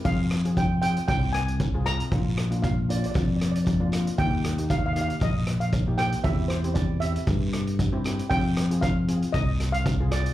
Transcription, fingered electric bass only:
X:1
M:4/4
L:1/8
Q:"Swing 16ths" 1/4=116
K:Fdor
V:1 name="Fingered electric bass" clef=bass
F,,4 C,,4 | B,,,4 F,,4 | E,,4 B,,,4 | =E,,4 G,,4 |
F,,4 C,,4 |]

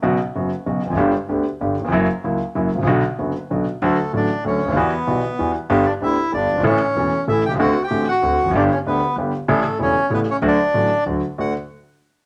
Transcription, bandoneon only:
X:1
M:3/4
L:1/16
Q:1/4=191
K:Bm
V:1 name="Bandoneon"
z12 | z12 | z12 | z12 |
[K:D] [A,A]4 [Dd]4 [Cc]4 | [B,B]8- [B,B]2 z2 | [B,B]2 [Dd]2 [Ee]4 [Dd]4 | [Cc]8 [Ee]2 [Gg]2 |
[Ff]3 [Gg]3 [Ff]6 | [Dd]2 [Cc]2 [B,B]4 z4 | [A,A]4 [Cc]4 [B,B]2 [Cc]2 | [Dd]8 z4 |
f2 z8 z2 |]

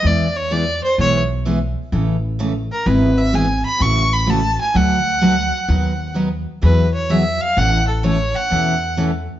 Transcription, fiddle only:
X:1
M:4/4
L:1/8
Q:"Swing" 1/4=128
K:A
V:1 name="Fiddle"
d c d =c ^c z3 | z3 _B =B e g b | c' b a g f4- | f2 z2 B c e =f |
f A c f3 z2 |]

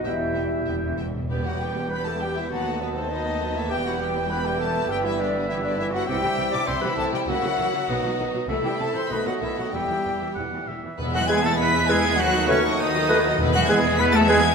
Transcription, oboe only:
X:1
M:2/4
L:1/16
Q:1/4=100
K:Em
V:1 name="Oboe"
g6 z2 | g8 | a8 | g8 |
e8 | e4 e4 | e4 ^d4 | e4 ^d4 |
e4 f2 e2 | [K:E] z F G A B2 G2 | F2 C2 D4 | z F G2 B A G2 |]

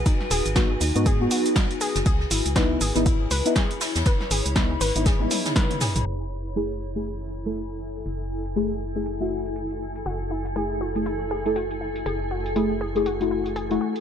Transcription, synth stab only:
X:1
M:4/4
L:1/16
Q:"Swing 16ths" 1/4=120
K:F#dor
V:1 name="Synth stab"
z4 [B,DF] z2 [B,DF] z [B,DF]6- [B,DF] | z4 [B,DE]2 z [B,DE] z3 [B,DE] z4 | z4 [B,DE] z2 [B,DE] z [B,DE]6- [B,DE] | z4 [A,EG]2 z [A,EG] z3 [A,EA] z4 |
z4 [A,EG] z2 [A,EG] z [A,EF]6- [A,EF]- | [A,EF]4 [A,EG]2 z [A,EG] z3 [A,EA] z4 | z4 [A,EG] z2 [A,EG] z [A,EF]4 [A,EF]2 z |]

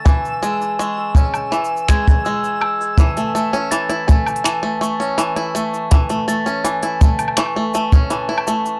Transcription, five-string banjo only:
X:1
M:4/4
L:1/16
Q:1/4=82
K:A
V:1 name="Five-string banjo"
E,2 G,2 G,2 C2 E,2 G,2 G,4 | E, A, A, C E, E A,2 E, A, A, C E, E A,2 | E, A, A, C E, E A,2 E, A, A, C E, E A,2 |]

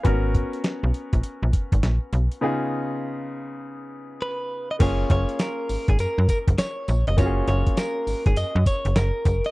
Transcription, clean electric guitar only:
X:1
M:4/4
L:1/16
Q:"Swing 16ths" 1/4=101
K:F#
V:1 name="Clean electric guitar"
z16 | z12 B3 d | c2 c2 A3 G A2 A2 c3 d | c2 c2 A3 G d2 c2 A3 d |]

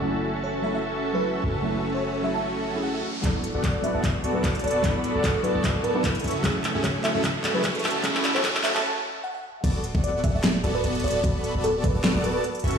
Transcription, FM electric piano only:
X:1
M:4/4
L:1/16
Q:"Swing 16ths" 1/4=150
K:Dlyd
V:1 name="FM electric piano"
z4 c z e e z3 B z4 | z3 c3 e a z4 f f z2 | z4 d z e e z3 B z2 d z | z4 A z B B z2 B4 z2 |
z4 c z e e z3 B z4 | z3 c3 e a z4 f f z2 | z4 d z e e z3 B z2 d z | z4 A z B B z2 B4 z2 |]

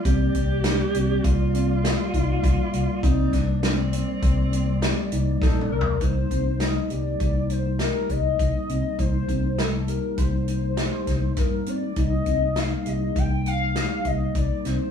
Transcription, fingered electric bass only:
X:1
M:5/4
L:1/16
Q:1/4=101
K:Cm
V:1 name="Fingered electric bass" clef=bass
C,,2 C,,4 C,,2 C,,6 C,,2 C,, z C,, z | C,,2 C,,6 C,,6 C,,2 B,,,2 C,,2 | C,,2 C,,4 C,,2 C,,6 C,,2 C,, z C,, z | C,,2 C,,6 C,,6 C,,2 G,,2 z2 |
C,,2 C,,4 C,,2 C,,6 C,,2 C,, z C,, z |]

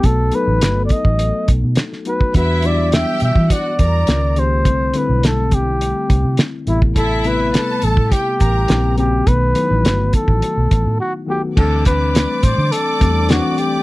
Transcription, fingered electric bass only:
X:1
M:4/4
L:1/16
Q:1/4=104
K:Bphr
V:1 name="Fingered electric bass" clef=bass
B,,,2 z A,,, z3 A,,,2 z B,,, B,, z4 | E,,4- E,, z B,, E, z2 E,,2 ^C,,4 | C,,2 z B,,,6 z C,, C, z2 A,,,2- | A,,,4- A,,, z A,,, A,, z2 A,,,2 ^A,,,4 |
B,,,2 z A,,, G,,,2 z A,,, z B,,, A,,, A,, z4 | D,,4- D,, z A,, D, z2 E,,3 z3 |]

